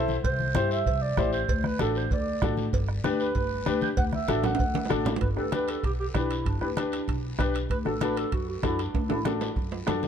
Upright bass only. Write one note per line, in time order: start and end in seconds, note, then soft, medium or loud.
0.00 0.18 B1 medium
0.24 0.49 C2 medium
0.56 0.81 G2 loud
0.86 1.11 C2 medium
1.17 1.42 A1 loud
1.49 1.74 D2 medium
1.80 2.05 A1 loud
2.11 2.36 D2 medium
2.42 2.67 A1 loud
2.73 2.98 G1 medium
3.04 3.29 D2 loud
3.35 3.60 G1 medium
3.67 3.91 D2 loud
3.97 4.22 D2 medium
4.28 4.53 A1 loud
4.59 4.84 D2 medium
4.91 5.16 A1 loud
5.21 5.34 G1 medium
5.37 5.74 D2 medium
5.84 6.08 B1 medium
6.15 6.39 B1 medium
6.45 6.58 G1 medium
6.61 6.99 D2 medium
7.08 7.33 B1 medium
7.39 7.64 B1 medium
7.70 7.83 D2 medium
7.86 8.23 A1 medium
8.32 8.57 F#2 medium
8.63 8.88 F#2 medium
8.94 9.07 D2 medium
9.10 9.47 A1 medium
9.56 9.81 F#2 medium
9.88 10.08 F#2 medium